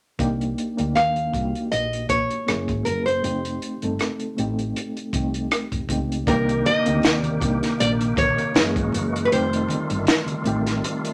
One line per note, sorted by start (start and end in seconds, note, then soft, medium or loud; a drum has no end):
0.19 0.53 C2 medium
0.19 0.71 A#3 medium
0.19 0.72 D4 medium
0.19 0.72 D#4 medium
0.19 0.72 G4 loud
0.19 kick loud
0.19 closed hi-hat medium
0.41 closed hi-hat soft
0.58 closed hi-hat soft
0.77 0.94 D2 medium
0.77 1.28 A#3 medium
0.77 1.28 D4 medium
0.77 1.28 D#4 soft
0.77 1.29 G4 medium
0.77 closed hi-hat soft
0.95 1.29 D#2 medium
0.95 1.67 F5 medium
0.95 cross-stick medium
0.95 closed hi-hat medium
1.16 closed hi-hat soft
1.33 1.52 C2 medium
1.33 2.45 A#3 soft
1.33 2.47 D#4 soft
1.33 1.41 F#4 soft
1.33 kick medium
1.33 closed hi-hat soft
1.41 2.51 G4 medium
1.55 closed hi-hat soft
1.72 2.06 A#1 medium
1.72 2.09 D#5 medium
1.72 closed hi-hat medium
1.93 closed hi-hat soft
2.09 2.28 A#1 medium
2.09 2.85 C#5 medium
2.09 kick medium
2.09 closed hi-hat medium
2.30 closed hi-hat soft
2.46 2.69 F#1 medium
2.46 3.15 A#3 medium
2.46 3.16 C#4 medium
2.46 3.16 E4 medium
2.46 3.17 G#4 medium
2.46 cross-stick medium
2.46 closed hi-hat medium
2.68 2.84 G#1 medium
2.68 kick medium
2.68 closed hi-hat soft
2.85 3.19 F#1 medium
2.85 3.05 A#4 medium
2.85 closed hi-hat medium
3.06 5.29 C5 medium
3.06 closed hi-hat soft
3.22 3.57 F1 medium
3.22 3.75 A3 medium
3.22 3.76 C4 medium
3.22 3.76 D#4 medium
3.22 3.76 G4 medium
3.22 closed hi-hat medium
3.45 closed hi-hat soft
3.62 closed hi-hat soft
3.82 3.98 G1 medium
3.82 4.32 A3 medium
3.82 4.32 C4 medium
3.82 4.32 D#4 medium
3.82 4.33 A4 medium
3.82 closed hi-hat soft
3.99 cross-stick medium
3.99 closed hi-hat medium
4.20 closed hi-hat soft
4.37 4.72 A1 medium
4.37 5.06 A3 medium
4.37 5.06 C4 medium
4.37 5.07 D#4 medium
4.37 5.07 G4 medium
4.37 closed hi-hat soft
4.59 closed hi-hat soft
4.76 closed hi-hat medium
4.97 closed hi-hat soft
5.13 5.47 C2 medium
5.13 5.82 A3 medium
5.13 5.82 C4 medium
5.13 5.83 D#4 medium
5.13 5.83 G4 medium
5.13 kick medium
5.13 closed hi-hat medium
5.34 closed hi-hat soft
5.51 cross-stick loud
5.51 closed hi-hat medium
5.72 5.88 F1 medium
5.72 kick medium
5.72 closed hi-hat soft
5.89 6.23 C#2 medium
5.89 6.23 A3 medium
5.89 6.24 C4 medium
5.89 6.24 D#4 medium
5.89 6.25 G4 medium
5.89 kick medium
5.89 closed hi-hat medium
6.12 closed hi-hat soft
6.27 6.61 C2 loud
6.27 8.53 C3 medium
6.27 8.53 D#3 medium
6.27 8.52 A#3 medium
6.27 6.79 A#3 medium
6.27 6.80 D4 medium
6.27 6.80 D#4 medium
6.27 8.52 G4 medium
6.27 6.80 G4 loud
6.27 6.63 A#4 medium
6.27 kick loud
6.27 closed hi-hat medium
6.27 muted conga soft
6.49 closed hi-hat soft
6.65 7.15 D#5 loud
6.65 closed hi-hat medium
6.65 high conga medium
6.86 7.02 D2 medium
6.86 7.35 A#3 medium
6.86 7.36 C4 medium
6.86 7.36 D#4 medium
6.86 7.37 G4 medium
6.86 closed hi-hat medium
7.02 7.38 D#2 medium
7.02 finger snap medium
7.02 snare loud
7.02 closed hi-hat medium
7.02 muted conga soft
7.15 7.37 D5 loud
7.23 closed hi-hat soft
7.23 high conga medium
7.40 7.60 C2 medium
7.40 8.55 A#3 medium
7.40 8.55 D4 medium
7.40 8.55 D#4 medium
7.40 8.56 G4 medium
7.40 kick medium
7.40 closed hi-hat medium
7.40 muted conga soft
7.40 high conga soft
7.40 low conga medium
7.63 snare soft
7.63 closed hi-hat soft
7.79 8.13 A#1 medium
7.79 7.90 D5 loud
7.79 closed hi-hat medium
7.79 muted conga soft
8.01 closed hi-hat soft
8.16 8.36 A#1 medium
8.16 9.25 C#5 medium
8.16 kick loud
8.16 closed hi-hat medium
8.16 muted conga soft
8.16 high conga medium
8.38 closed hi-hat soft
8.54 8.77 F#1 loud
8.54 9.30 E3 medium
8.54 9.30 G#3 medium
8.54 8.62 G#3 medium
8.54 9.30 A#3 medium
8.54 9.24 C#4 medium
8.54 9.25 E4 medium
8.54 9.30 F#4 medium
8.54 9.25 G#4 medium
8.54 finger snap loud
8.54 snare loud
8.54 closed hi-hat medium
8.54 muted conga soft
8.54 high conga medium
8.62 9.27 A#3 medium
8.76 8.92 G#1 medium
8.76 kick loud
8.76 closed hi-hat soft
8.76 low conga medium
8.92 9.27 F#1 medium
8.92 closed hi-hat medium
8.92 low conga medium
9.16 closed hi-hat soft
9.25 9.31 B4 medium
9.31 9.65 F1 loud
9.31 11.13 D#3 medium
9.31 11.13 G3 medium
9.31 10.34 A3 loud
9.31 11.13 A3 medium
9.31 10.35 C4 medium
9.31 10.35 D#4 medium
9.31 11.13 F4 medium
9.31 10.35 G4 loud
9.31 11.13 C5 medium
9.31 closed hi-hat medium
9.53 closed hi-hat soft
9.69 closed hi-hat medium
9.69 muted conga soft
9.69 high conga medium
9.90 10.05 G1 medium
9.90 closed hi-hat soft
10.05 finger snap medium
10.05 snare loud
10.05 closed hi-hat medium
10.05 muted conga soft
10.26 closed hi-hat soft
10.26 high conga medium
10.44 10.79 A1 medium
10.44 11.13 A3 medium
10.44 11.13 C4 medium
10.44 11.13 D#4 medium
10.44 11.13 G4 medium
10.44 closed hi-hat medium
10.44 muted conga soft
10.44 high conga soft
10.44 low conga medium
10.66 snare soft
10.66 closed hi-hat soft
10.82 closed hi-hat medium
10.82 muted conga soft
11.05 closed hi-hat medium